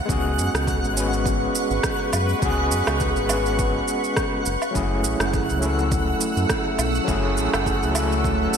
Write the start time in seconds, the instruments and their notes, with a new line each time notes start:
Already playing: ambient pad B4 F#5 C#6, synth texture F#5
0.06 analog synth bass C#2, tine electric piano G#3 B3 C#4, kick
0.10 tine electric piano F#4 G#4, shaker
0.38 analog synth bass F#2, shaker
0.54 analog synth bass C#2, cross-stick, shaker
0.67 kick, shaker
0.84 analog synth bass G#1, shaker
0.93 tine electric piano G#3 B3 C#4, shaker
0.98 tine electric piano F#4 B4
1.13 shaker
1.26 kick, shaker
1.55 shaker
1.71 analog synth bass G#1, shaker
1.83 kick, cross-stick, shaker
2.13 analog synth bass F#2, low woodblock, shaker
2.29 shaker
2.39 analog synth bass C#2, tine electric piano G#3 B3 C#4, kick, shaker
2.44 tine electric piano F#4 G#4
2.71 analog synth bass F#2, shaker
2.87 analog synth bass C#2, cross-stick, low woodblock, shaker
3.00 kick, shaker
3.16 analog synth bass G#1, shaker
3.26 tine electric piano G#3 B3 C#4, low woodblock, shaker
3.30 tine electric piano F#4 B4
3.46 shaker
3.59 kick, shaker
3.88 shaker
4.04 shaker
4.17 kick, cross-stick, shaker
4.46 analog synth bass F#1, ambient pad A3 F#5 E6, shaker
4.62 low woodblock, shaker
4.71 tine electric piano F#3 A3 C#4
4.75 analog synth bass F#1, tine electric piano E4 G#4, kick, shaker
5.04 analog synth bass A1, shaker
5.20 analog synth bass F#1, cross-stick, shaker
5.33 kick, shaker
5.49 analog synth bass C#2, shaker
5.59 tine electric piano F#3 A3 C#4, shaker
5.64 tine electric piano E4 A4
5.79 shaker
5.92 kick, shaker
6.21 shaker
6.37 analog synth bass F#2, shaker
6.49 kick, cross-stick, shaker
6.79 analog synth bass B1, low woodblock, shaker
6.95 shaker
7.04 analog synth bass F#1, tine electric piano F#3 A3 C#4, kick, shaker
7.09 tine electric piano E4 G#4
7.37 analog synth bass A1, shaker
7.54 analog synth bass F#1, cross-stick, low woodblock, shaker
7.66 kick, shaker
7.83 analog synth bass C#2, shaker
7.92 tine electric piano F#3 A3 C#4, low woodblock, shaker
7.96 tine electric piano E4 A4
8.12 shaker
8.24 kick, shaker
8.54 shaker